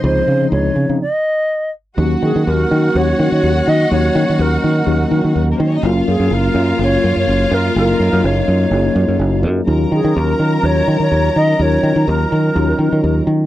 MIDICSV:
0, 0, Header, 1, 6, 480
1, 0, Start_track
1, 0, Tempo, 480769
1, 48, Time_signature, 4, 2, 24, 8
1, 13441, End_track
2, 0, Start_track
2, 0, Title_t, "Alto flute"
2, 0, Program_c, 0, 73
2, 45, Note_on_c, 0, 72, 96
2, 495, Note_off_c, 0, 72, 0
2, 513, Note_on_c, 0, 73, 91
2, 970, Note_off_c, 0, 73, 0
2, 1014, Note_on_c, 0, 75, 92
2, 1697, Note_off_c, 0, 75, 0
2, 2232, Note_on_c, 0, 68, 87
2, 2450, Note_off_c, 0, 68, 0
2, 2464, Note_on_c, 0, 70, 94
2, 2959, Note_on_c, 0, 73, 106
2, 2974, Note_off_c, 0, 70, 0
2, 3310, Note_off_c, 0, 73, 0
2, 3316, Note_on_c, 0, 73, 109
2, 3679, Note_on_c, 0, 75, 112
2, 3694, Note_off_c, 0, 73, 0
2, 3911, Note_off_c, 0, 75, 0
2, 3916, Note_on_c, 0, 73, 107
2, 4402, Note_on_c, 0, 70, 86
2, 4417, Note_off_c, 0, 73, 0
2, 5595, Note_off_c, 0, 70, 0
2, 6074, Note_on_c, 0, 68, 91
2, 6332, Note_on_c, 0, 70, 100
2, 6347, Note_off_c, 0, 68, 0
2, 6799, Note_off_c, 0, 70, 0
2, 6815, Note_on_c, 0, 73, 121
2, 7142, Note_off_c, 0, 73, 0
2, 7173, Note_on_c, 0, 73, 112
2, 7526, Note_on_c, 0, 70, 102
2, 7541, Note_off_c, 0, 73, 0
2, 7752, Note_off_c, 0, 70, 0
2, 7758, Note_on_c, 0, 70, 105
2, 8240, Note_on_c, 0, 73, 94
2, 8255, Note_off_c, 0, 70, 0
2, 9429, Note_off_c, 0, 73, 0
2, 9919, Note_on_c, 0, 68, 81
2, 10133, Note_off_c, 0, 68, 0
2, 10163, Note_on_c, 0, 70, 99
2, 10634, Note_on_c, 0, 73, 115
2, 10649, Note_off_c, 0, 70, 0
2, 10992, Note_off_c, 0, 73, 0
2, 10997, Note_on_c, 0, 73, 110
2, 11357, Note_on_c, 0, 75, 113
2, 11371, Note_off_c, 0, 73, 0
2, 11598, Note_on_c, 0, 73, 110
2, 11613, Note_off_c, 0, 75, 0
2, 12065, Note_off_c, 0, 73, 0
2, 12075, Note_on_c, 0, 70, 88
2, 13220, Note_off_c, 0, 70, 0
2, 13441, End_track
3, 0, Start_track
3, 0, Title_t, "String section"
3, 0, Program_c, 1, 48
3, 0, Note_on_c, 1, 75, 87
3, 0, Note_on_c, 1, 84, 94
3, 725, Note_off_c, 1, 75, 0
3, 725, Note_off_c, 1, 84, 0
3, 1964, Note_on_c, 1, 66, 93
3, 1969, Note_on_c, 1, 78, 108
3, 5418, Note_off_c, 1, 66, 0
3, 5421, Note_off_c, 1, 78, 0
3, 5502, Note_on_c, 1, 58, 59
3, 5503, Note_on_c, 1, 70, 61
3, 5574, Note_on_c, 1, 72, 84
3, 5575, Note_on_c, 1, 60, 69
3, 5584, Note_off_c, 1, 58, 0
3, 5584, Note_off_c, 1, 70, 0
3, 5658, Note_on_c, 1, 61, 76
3, 5660, Note_off_c, 1, 72, 0
3, 5660, Note_on_c, 1, 73, 92
3, 5661, Note_off_c, 1, 60, 0
3, 5734, Note_on_c, 1, 63, 92
3, 5734, Note_on_c, 1, 75, 104
3, 5742, Note_off_c, 1, 61, 0
3, 5743, Note_off_c, 1, 73, 0
3, 5811, Note_on_c, 1, 65, 101
3, 5813, Note_on_c, 1, 77, 105
3, 5820, Note_off_c, 1, 63, 0
3, 5820, Note_off_c, 1, 75, 0
3, 9374, Note_off_c, 1, 65, 0
3, 9375, Note_off_c, 1, 77, 0
3, 9659, Note_on_c, 1, 82, 116
3, 9660, Note_on_c, 1, 70, 91
3, 13207, Note_off_c, 1, 82, 0
3, 13208, Note_off_c, 1, 70, 0
3, 13441, End_track
4, 0, Start_track
4, 0, Title_t, "French horn section"
4, 0, Program_c, 2, 60
4, 0, Note_on_c, 2, 51, 74
4, 0, Note_on_c, 2, 53, 71
4, 0, Note_on_c, 2, 56, 71
4, 0, Note_on_c, 2, 63, 85
4, 967, Note_off_c, 2, 51, 0
4, 976, Note_off_c, 2, 56, 0
4, 977, Note_off_c, 2, 63, 0
4, 980, Note_off_c, 2, 53, 0
4, 1951, Note_on_c, 2, 51, 87
4, 1951, Note_on_c, 2, 66, 97
4, 1955, Note_on_c, 2, 54, 70
4, 1959, Note_on_c, 2, 61, 81
4, 3871, Note_off_c, 2, 66, 0
4, 3887, Note_on_c, 2, 63, 95
4, 5774, Note_off_c, 2, 51, 0
4, 5778, Note_off_c, 2, 61, 0
4, 5798, Note_off_c, 2, 63, 0
4, 5819, Note_on_c, 2, 58, 78
4, 5820, Note_on_c, 2, 65, 95
4, 5821, Note_on_c, 2, 49, 81
4, 7723, Note_off_c, 2, 65, 0
4, 7752, Note_on_c, 2, 63, 101
4, 9619, Note_off_c, 2, 58, 0
4, 9620, Note_off_c, 2, 49, 0
4, 9636, Note_on_c, 2, 65, 90
4, 9640, Note_on_c, 2, 61, 81
4, 9644, Note_on_c, 2, 51, 86
4, 9645, Note_off_c, 2, 63, 0
4, 11543, Note_off_c, 2, 65, 0
4, 11588, Note_on_c, 2, 63, 91
4, 13436, Note_off_c, 2, 54, 0
4, 13439, Note_off_c, 2, 61, 0
4, 13441, Note_off_c, 2, 51, 0
4, 13441, Note_off_c, 2, 63, 0
4, 13441, End_track
5, 0, Start_track
5, 0, Title_t, "Tine electric piano"
5, 0, Program_c, 3, 4
5, 0, Control_c, 3, 64, 127
5, 0, Note_on_c, 3, 48, 68
5, 0, Note_on_c, 3, 49, 70
5, 0, Note_on_c, 3, 53, 62
5, 0, Note_on_c, 3, 60, 69
5, 0, Note_on_c, 3, 63, 79
5, 45, Note_off_c, 3, 49, 0
5, 45, Note_on_c, 3, 49, 75
5, 52, Note_off_c, 3, 53, 0
5, 52, Note_on_c, 3, 53, 74
5, 53, Note_off_c, 3, 60, 0
5, 53, Note_on_c, 3, 60, 71
5, 57, Note_off_c, 3, 63, 0
5, 57, Note_on_c, 3, 63, 80
5, 314, Note_off_c, 3, 49, 0
5, 318, Note_off_c, 3, 53, 0
5, 319, Note_off_c, 3, 60, 0
5, 320, Note_off_c, 3, 63, 0
5, 407, Note_on_c, 3, 49, 66
5, 416, Note_on_c, 3, 53, 63
5, 418, Note_on_c, 3, 60, 61
5, 426, Note_on_c, 3, 62, 66
5, 476, Note_off_c, 3, 62, 0
5, 486, Note_on_c, 3, 63, 86
5, 761, Note_off_c, 3, 49, 0
5, 765, Note_off_c, 3, 53, 0
5, 766, Note_off_c, 3, 60, 0
5, 800, Note_off_c, 3, 63, 0
5, 886, Note_on_c, 3, 49, 74
5, 890, Note_on_c, 3, 53, 62
5, 900, Note_on_c, 3, 60, 72
5, 900, Note_on_c, 3, 63, 80
5, 1006, Note_off_c, 3, 49, 0
5, 1008, Note_off_c, 3, 53, 0
5, 1013, Note_off_c, 3, 60, 0
5, 1013, Note_off_c, 3, 63, 0
5, 1027, Control_c, 3, 64, 0
5, 1035, Note_off_c, 3, 48, 0
5, 1969, Note_on_c, 3, 54, 91
5, 1975, Note_on_c, 3, 58, 90
5, 1976, Note_on_c, 3, 61, 78
5, 1978, Note_on_c, 3, 66, 98
5, 1980, Note_on_c, 3, 63, 86
5, 2151, Control_c, 3, 64, 127
5, 2684, Note_off_c, 3, 54, 0
5, 2687, Note_off_c, 3, 58, 0
5, 2687, Note_off_c, 3, 61, 0
5, 2689, Note_off_c, 3, 63, 0
5, 2689, Note_off_c, 3, 66, 0
5, 2938, Note_on_c, 3, 54, 77
5, 2942, Note_on_c, 3, 58, 75
5, 2947, Note_on_c, 3, 61, 83
5, 2952, Note_on_c, 3, 63, 72
5, 2957, Note_on_c, 3, 66, 98
5, 3650, Note_off_c, 3, 54, 0
5, 3652, Note_off_c, 3, 58, 0
5, 3654, Note_off_c, 3, 61, 0
5, 3657, Note_off_c, 3, 63, 0
5, 3659, Note_off_c, 3, 66, 0
5, 3907, Note_on_c, 3, 54, 84
5, 3907, Note_on_c, 3, 58, 69
5, 3911, Note_on_c, 3, 61, 70
5, 3916, Note_on_c, 3, 63, 73
5, 3924, Note_on_c, 3, 66, 91
5, 4615, Note_off_c, 3, 54, 0
5, 4615, Note_off_c, 3, 58, 0
5, 4617, Note_off_c, 3, 61, 0
5, 4619, Note_off_c, 3, 63, 0
5, 4623, Note_off_c, 3, 66, 0
5, 4859, Note_on_c, 3, 54, 89
5, 4863, Note_on_c, 3, 58, 76
5, 4866, Note_on_c, 3, 61, 80
5, 4869, Note_on_c, 3, 63, 77
5, 4875, Note_on_c, 3, 66, 91
5, 5571, Note_off_c, 3, 54, 0
5, 5573, Note_off_c, 3, 58, 0
5, 5574, Note_off_c, 3, 61, 0
5, 5576, Note_off_c, 3, 63, 0
5, 5579, Note_off_c, 3, 66, 0
5, 5832, Note_on_c, 3, 54, 95
5, 5837, Note_on_c, 3, 58, 85
5, 5838, Control_c, 3, 64, 0
5, 5839, Note_on_c, 3, 61, 89
5, 5844, Note_on_c, 3, 65, 88
5, 5850, Note_on_c, 3, 70, 105
5, 6012, Control_c, 3, 64, 127
5, 6538, Note_off_c, 3, 54, 0
5, 6540, Note_off_c, 3, 58, 0
5, 6541, Note_off_c, 3, 61, 0
5, 6543, Note_off_c, 3, 65, 0
5, 6546, Note_off_c, 3, 70, 0
5, 6781, Note_on_c, 3, 54, 80
5, 6784, Note_on_c, 3, 58, 73
5, 6789, Note_on_c, 3, 61, 83
5, 6791, Note_on_c, 3, 65, 76
5, 6793, Note_on_c, 3, 70, 82
5, 7491, Note_off_c, 3, 54, 0
5, 7493, Note_off_c, 3, 58, 0
5, 7495, Note_off_c, 3, 61, 0
5, 7496, Note_off_c, 3, 65, 0
5, 7497, Note_off_c, 3, 70, 0
5, 7740, Note_on_c, 3, 54, 77
5, 7751, Note_on_c, 3, 58, 73
5, 7753, Note_on_c, 3, 61, 73
5, 7753, Note_on_c, 3, 65, 68
5, 7758, Note_on_c, 3, 69, 68
5, 7812, Note_off_c, 3, 69, 0
5, 7817, Note_on_c, 3, 70, 81
5, 8450, Note_off_c, 3, 54, 0
5, 8455, Note_off_c, 3, 58, 0
5, 8456, Note_off_c, 3, 61, 0
5, 8456, Note_off_c, 3, 65, 0
5, 8488, Note_off_c, 3, 70, 0
5, 8703, Note_on_c, 3, 54, 73
5, 8705, Note_on_c, 3, 58, 79
5, 8709, Note_on_c, 3, 61, 75
5, 8715, Note_on_c, 3, 65, 74
5, 8719, Note_on_c, 3, 68, 90
5, 9410, Note_off_c, 3, 54, 0
5, 9411, Note_off_c, 3, 58, 0
5, 9413, Note_off_c, 3, 61, 0
5, 9416, Note_off_c, 3, 65, 0
5, 9418, Note_off_c, 3, 68, 0
5, 9653, Note_on_c, 3, 54, 95
5, 9655, Note_on_c, 3, 61, 84
5, 9662, Note_on_c, 3, 63, 79
5, 9667, Note_on_c, 3, 65, 89
5, 9669, Note_on_c, 3, 70, 108
5, 9671, Control_c, 3, 64, 0
5, 9838, Control_c, 3, 64, 127
5, 10363, Note_off_c, 3, 54, 0
5, 10364, Note_off_c, 3, 61, 0
5, 10367, Note_off_c, 3, 63, 0
5, 10370, Note_off_c, 3, 65, 0
5, 10371, Note_off_c, 3, 70, 0
5, 10604, Note_on_c, 3, 54, 76
5, 10608, Note_on_c, 3, 61, 70
5, 10608, Note_on_c, 3, 63, 78
5, 10615, Note_on_c, 3, 65, 74
5, 10615, Note_on_c, 3, 70, 91
5, 11317, Note_off_c, 3, 54, 0
5, 11319, Note_off_c, 3, 61, 0
5, 11319, Note_off_c, 3, 63, 0
5, 11322, Note_off_c, 3, 65, 0
5, 11322, Note_off_c, 3, 70, 0
5, 11574, Note_on_c, 3, 61, 66
5, 11576, Note_on_c, 3, 54, 73
5, 11578, Note_on_c, 3, 63, 65
5, 11580, Note_on_c, 3, 65, 73
5, 11589, Note_on_c, 3, 70, 86
5, 12280, Note_off_c, 3, 61, 0
5, 12281, Note_off_c, 3, 54, 0
5, 12282, Note_off_c, 3, 63, 0
5, 12283, Note_off_c, 3, 65, 0
5, 12288, Note_off_c, 3, 70, 0
5, 12528, Note_on_c, 3, 54, 84
5, 12531, Note_on_c, 3, 61, 75
5, 12535, Note_on_c, 3, 63, 73
5, 12537, Note_on_c, 3, 65, 80
5, 12543, Note_on_c, 3, 70, 88
5, 13235, Note_off_c, 3, 54, 0
5, 13237, Note_off_c, 3, 61, 0
5, 13239, Note_off_c, 3, 63, 0
5, 13240, Note_off_c, 3, 65, 0
5, 13243, Note_off_c, 3, 70, 0
5, 13441, End_track
6, 0, Start_track
6, 0, Title_t, "Fingered electric bass"
6, 0, Program_c, 4, 33
6, 36, Note_on_c, 4, 37, 123
6, 211, Note_off_c, 4, 37, 0
6, 276, Note_on_c, 4, 49, 99
6, 452, Note_off_c, 4, 49, 0
6, 518, Note_on_c, 4, 37, 110
6, 694, Note_off_c, 4, 37, 0
6, 757, Note_on_c, 4, 49, 99
6, 853, Note_off_c, 4, 49, 0
6, 893, Note_on_c, 4, 49, 85
6, 976, Note_off_c, 4, 49, 0
6, 1975, Note_on_c, 4, 39, 109
6, 2146, Note_off_c, 4, 39, 0
6, 2222, Note_on_c, 4, 51, 110
6, 2311, Note_off_c, 4, 51, 0
6, 2354, Note_on_c, 4, 51, 102
6, 2431, Note_off_c, 4, 51, 0
6, 2469, Note_on_c, 4, 39, 114
6, 2636, Note_off_c, 4, 39, 0
6, 2710, Note_on_c, 4, 51, 124
6, 2877, Note_off_c, 4, 51, 0
6, 2947, Note_on_c, 4, 39, 105
6, 3116, Note_off_c, 4, 39, 0
6, 3190, Note_on_c, 4, 51, 113
6, 3278, Note_off_c, 4, 51, 0
6, 3316, Note_on_c, 4, 51, 88
6, 3393, Note_off_c, 4, 51, 0
6, 3426, Note_on_c, 4, 39, 102
6, 3595, Note_off_c, 4, 39, 0
6, 3670, Note_on_c, 4, 51, 110
6, 3838, Note_off_c, 4, 51, 0
6, 3908, Note_on_c, 4, 39, 118
6, 4077, Note_off_c, 4, 39, 0
6, 4147, Note_on_c, 4, 51, 113
6, 4237, Note_off_c, 4, 51, 0
6, 4289, Note_on_c, 4, 51, 94
6, 4363, Note_off_c, 4, 51, 0
6, 4384, Note_on_c, 4, 39, 120
6, 4555, Note_off_c, 4, 39, 0
6, 4631, Note_on_c, 4, 51, 115
6, 4799, Note_off_c, 4, 51, 0
6, 4860, Note_on_c, 4, 39, 108
6, 5032, Note_off_c, 4, 39, 0
6, 5104, Note_on_c, 4, 51, 115
6, 5195, Note_off_c, 4, 51, 0
6, 5237, Note_on_c, 4, 51, 96
6, 5315, Note_off_c, 4, 51, 0
6, 5347, Note_on_c, 4, 39, 97
6, 5517, Note_off_c, 4, 39, 0
6, 5588, Note_on_c, 4, 51, 111
6, 5758, Note_off_c, 4, 51, 0
6, 5822, Note_on_c, 4, 30, 127
6, 5993, Note_off_c, 4, 30, 0
6, 6070, Note_on_c, 4, 42, 107
6, 6159, Note_off_c, 4, 42, 0
6, 6186, Note_on_c, 4, 42, 100
6, 6269, Note_off_c, 4, 42, 0
6, 6298, Note_on_c, 4, 30, 104
6, 6471, Note_off_c, 4, 30, 0
6, 6536, Note_on_c, 4, 42, 115
6, 6710, Note_off_c, 4, 42, 0
6, 6778, Note_on_c, 4, 30, 102
6, 6951, Note_off_c, 4, 30, 0
6, 7029, Note_on_c, 4, 42, 103
6, 7118, Note_off_c, 4, 42, 0
6, 7152, Note_on_c, 4, 42, 89
6, 7232, Note_off_c, 4, 42, 0
6, 7263, Note_on_c, 4, 30, 104
6, 7434, Note_off_c, 4, 30, 0
6, 7502, Note_on_c, 4, 42, 123
6, 7673, Note_off_c, 4, 42, 0
6, 7749, Note_on_c, 4, 30, 127
6, 7917, Note_off_c, 4, 30, 0
6, 7985, Note_on_c, 4, 42, 97
6, 8075, Note_off_c, 4, 42, 0
6, 8116, Note_on_c, 4, 42, 109
6, 8194, Note_off_c, 4, 42, 0
6, 8227, Note_on_c, 4, 30, 113
6, 8396, Note_off_c, 4, 30, 0
6, 8466, Note_on_c, 4, 42, 106
6, 8635, Note_off_c, 4, 42, 0
6, 8697, Note_on_c, 4, 30, 96
6, 8869, Note_off_c, 4, 30, 0
6, 8941, Note_on_c, 4, 42, 112
6, 9032, Note_off_c, 4, 42, 0
6, 9069, Note_on_c, 4, 42, 85
6, 9149, Note_off_c, 4, 42, 0
6, 9179, Note_on_c, 4, 30, 99
6, 9415, Note_on_c, 4, 42, 111
6, 9430, Note_off_c, 4, 30, 0
6, 9587, Note_off_c, 4, 42, 0
6, 9659, Note_on_c, 4, 39, 108
6, 9829, Note_off_c, 4, 39, 0
6, 9903, Note_on_c, 4, 51, 103
6, 9992, Note_off_c, 4, 51, 0
6, 10029, Note_on_c, 4, 51, 106
6, 10108, Note_off_c, 4, 51, 0
6, 10149, Note_on_c, 4, 39, 124
6, 10315, Note_off_c, 4, 39, 0
6, 10378, Note_on_c, 4, 51, 108
6, 10548, Note_off_c, 4, 51, 0
6, 10615, Note_on_c, 4, 39, 94
6, 10786, Note_off_c, 4, 39, 0
6, 10860, Note_on_c, 4, 51, 107
6, 10949, Note_off_c, 4, 51, 0
6, 10982, Note_on_c, 4, 51, 81
6, 11062, Note_off_c, 4, 51, 0
6, 11097, Note_on_c, 4, 39, 94
6, 11266, Note_off_c, 4, 39, 0
6, 11343, Note_on_c, 4, 51, 99
6, 11510, Note_off_c, 4, 51, 0
6, 11576, Note_on_c, 4, 39, 106
6, 11745, Note_off_c, 4, 39, 0
6, 11814, Note_on_c, 4, 51, 115
6, 11904, Note_off_c, 4, 51, 0
6, 11940, Note_on_c, 4, 51, 110
6, 12020, Note_off_c, 4, 51, 0
6, 12059, Note_on_c, 4, 39, 120
6, 12226, Note_off_c, 4, 39, 0
6, 12302, Note_on_c, 4, 51, 120
6, 12468, Note_off_c, 4, 51, 0
6, 12537, Note_on_c, 4, 39, 114
6, 12704, Note_off_c, 4, 39, 0
6, 12766, Note_on_c, 4, 51, 102
6, 12858, Note_off_c, 4, 51, 0
6, 12903, Note_on_c, 4, 51, 85
6, 12981, Note_off_c, 4, 51, 0
6, 13015, Note_on_c, 4, 39, 102
6, 13183, Note_off_c, 4, 39, 0
6, 13248, Note_on_c, 4, 51, 111
6, 13418, Note_off_c, 4, 51, 0
6, 13441, End_track
0, 0, End_of_file